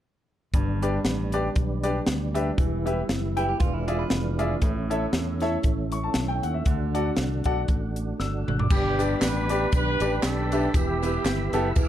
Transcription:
0.54 fingered electric bass G1, upright piano G2, tonewheel organ G3 B3 D4, kick, closed hi-hat
0.82 upright piano D4 G4 B4 D5, closed hi-hat
1.05 fingered electric bass A1, snare, closed hi-hat
1.32 upright piano D4 G4 B4 D5, closed hi-hat
1.56 fingered electric bass B1, kick, closed hi-hat
1.83 upright piano D4 G4 B4 D5, closed hi-hat
2.06 fingered electric bass D2, snare, closed hi-hat
2.34 upright piano D4 G4 B4 E5, closed hi-hat
2.57 fingered electric bass E1, upright piano E3, tonewheel organ E4, kick, closed hi-hat
2.86 upright piano E4 G4 B4 E5, closed hi-hat
3.09 fingered electric bass F#1, snare, closed hi-hat
3.36 upright piano E4 G4 B4 G5, clean electric guitar E4, closed hi-hat
3.49 clean electric guitar G4
3.60 fingered electric bass E1, tonewheel organ E3 G#3 D4 F4, upright piano E3, clean electric guitar F4, kick, closed hi-hat
3.74 clean electric guitar E4
3.88 upright piano F4 G#4 D5 E5, clean electric guitar G#4, closed hi-hat
3.99 clean electric guitar B4
4.10 fingered electric bass F1, snare, closed hi-hat
4.39 upright piano F4 G#4 D5 E5, closed hi-hat
4.62 fingered electric bass A1, upright piano A2, tonewheel organ A3 C#4 E4, kick, closed hi-hat
4.90 upright piano E4 A4 C#5 E5, closed hi-hat
5.13 fingered electric bass E2, snare, closed hi-hat
5.41 upright piano E4 A4 C#5 E5, snare, closed hi-hat
5.63 fingered electric bass A1, kick, closed hi-hat
5.92 upright piano C#6, closed hi-hat
6.03 upright piano A5
6.14 fingered electric bass B1, snare, closed hi-hat
6.28 upright piano G5
6.43 fingered electric bass D#2, upright piano F#5, closed hi-hat
6.54 upright piano E5
6.66 fingered electric bass D2, upright piano D3, tonewheel organ D4 F#4, kick, closed hi-hat
6.94 upright piano F#4 A4 D5 F#5, closed hi-hat
7.17 fingered electric bass C2, snare, closed hi-hat
7.44 fingered electric bass B1, upright piano F#4 A4 D5 F#5, kick, closed hi-hat
7.68 fingered electric bass A1, kick, closed hi-hat
7.96 closed hi-hat
8.20 fingered electric bass G1, upright piano E6, snare
8.48 fingered electric bass G#1, upright piano F#6, mid tom
8.59 upright piano D6, floor tom
8.70 fingered electric bass G1, upright piano G2, horn section B3 D4 G4, tonewheel organ G4 B4 D5 B5, kick, crash, tambourine
8.98 upright piano D4 G4 B4 D5, closed hi-hat, tambourine
9.21 fingered electric bass A1, horn section D4 G4 B4, snare, clap, closed hi-hat, tambourine
9.49 upright piano D4 G4 B4 D5, closed hi-hat, tambourine
9.72 fingered electric bass B1, horn section D4 G4 B4, kick, closed hi-hat, tambourine
10.00 fingered electric bass A1, upright piano D4 G4 B4 D5, closed hi-hat, tambourine
10.23 fingered electric bass B1, horn section D4 A4, snare, clap, closed hi-hat, tambourine
10.52 upright piano D4 G4 B4 E5, closed hi-hat, tambourine
10.74 fingered electric bass E1, upright piano E3, horn section B3 E4 G4, tonewheel organ B4 E5, kick, closed hi-hat, tambourine
11.02 upright piano B3 E4 G4 B4, closed hi-hat, tambourine
11.24 fingered electric bass G1, snare, clap, closed hi-hat, tambourine
11.53 fingered electric bass F#1, upright piano B3 E4 G4 A4, closed hi-hat, tambourine
11.76 fingered electric bass E1, upright piano E3, tonewheel organ G#4 F5 D6, kick, closed hi-hat, tambourine

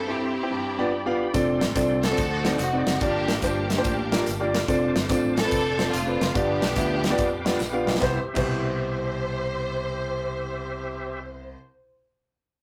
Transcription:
Already playing: grand piano G2, tonewheel organ G4 C5 E5 C6
0.08 grand piano C4 E4 A4, string section C4 E4 G4
0.43 grand piano C4 E4 G4
0.50 grand piano G2, tonewheel organ D5 G5 B5
0.78 grand piano B3 D4 F4 G4 D5
1.06 grand piano B3 D4 F4 G4 F5
1.33 fingered electric bass F1, grand piano C4 D4 F4 A4 D5, tonewheel organ A4 D5 C6, kick, closed hi-hat, tambourine
1.61 fingered electric bass A1, snare, closed hi-hat, tambourine
1.75 fingered electric bass C2, grand piano C4 D4 F4 A4 D5, kick, clap, closed hi-hat, tambourine
2.03 string section C4 F#4 A4, snare, closed hi-hat, tambourine
2.11 grand piano C4 D4 F4 A4 D5
2.17 fingered electric bass D2, grand piano D3, tonewheel organ C5 D#5 F#5 D6, kick, closed hi-hat, tambourine
2.45 grand piano C4 D#4 F#4 A4 D5, snare, closed hi-hat, tambourine
2.59 fingered electric bass F1, string section F#4, clap, closed hi-hat, tambourine
2.73 grand piano C4 D#4 F#4 A4 D5
2.87 fingered electric bass F#1, string section F#4, snare, closed hi-hat, tambourine
3.01 fingered electric bass G1, grand piano G2 A#3 D4 F4 G4 D5, string section A#3 D4 G4, tonewheel organ A#4 F5 G5, kick, closed hi-hat, tambourine
3.28 fingered electric bass A1, snare, closed hi-hat, tambourine
3.42 fingered electric bass G1, grand piano A#3 D4 F4 G4 C5, string section A#3 D4 G4, kick, clap, closed hi-hat, tambourine
3.70 snare, closed hi-hat, tambourine
3.78 grand piano A#3 D4 F4 G4 C5
3.84 fingered electric bass A1, kick, closed hi-hat, tambourine
4.12 grand piano A#3 D4 F4 G4 A#4, snare, closed hi-hat, tambourine
4.27 fingered electric bass G1, clap, closed hi-hat, tambourine
4.40 grand piano A#3 D4 F4 G4 D5
4.54 snare, closed hi-hat, tambourine
4.67 fingered electric bass F1, grand piano C4 D4 F4 A4 D5, tonewheel organ C5 A5, kick, closed hi-hat, tambourine
4.96 fingered electric bass G1, snare, closed hi-hat, tambourine
5.09 fingered electric bass A1, grand piano C4 D4 F4 A4 D5, kick, clap, closed hi-hat, tambourine
5.37 string section C4 D4 A4, snare, closed hi-hat, tambourine
5.44 grand piano C4 D4 F4 A4 B4
5.51 fingered electric bass F1, kick, closed hi-hat, tambourine
5.78 grand piano C4 D4 F4 A4 C5, snare, closed hi-hat, tambourine
5.93 fingered electric bass F1, string section A3 C4 F4, clap, closed hi-hat, tambourine
6.06 grand piano C4 D4 F4 A4 B4
6.21 fingered electric bass F#1, snare, closed hi-hat, tambourine
6.34 fingered electric bass G1, grand piano G2 B3 D4 F4 G4 D5, string section B3 D4 G4, tonewheel organ B4 G5 D6, kick, closed hi-hat, tambourine
6.62 fingered electric bass B1, snare, closed hi-hat, tambourine
6.76 fingered electric bass D2, grand piano B3 D4 F4 G4 E5, kick, clap, closed hi-hat, tambourine
7.04 snare, closed hi-hat, tambourine
7.10 grand piano B3 D4 F4 G4 D5
7.18 fingered electric bass F2, kick, closed hi-hat, tambourine
7.45 grand piano B3 D4 F4 G4 D5, snare, closed hi-hat, tambourine
7.60 fingered electric bass A#1, snare, clap, tambourine
7.72 grand piano B3 D4 F4 G4 F5
7.87 fingered electric bass B1, snare, tambourine
7.95 grand piano B3, snare
8.00 grand piano C2 E4 G4 C5, fingered electric bass C2, tonewheel organ G4 C5 E5, string section C5, kick, snare, clap
8.34 grand piano C2 B2 E4 G4 C5, fingered electric bass C2, string section C5, kick, clap, crash

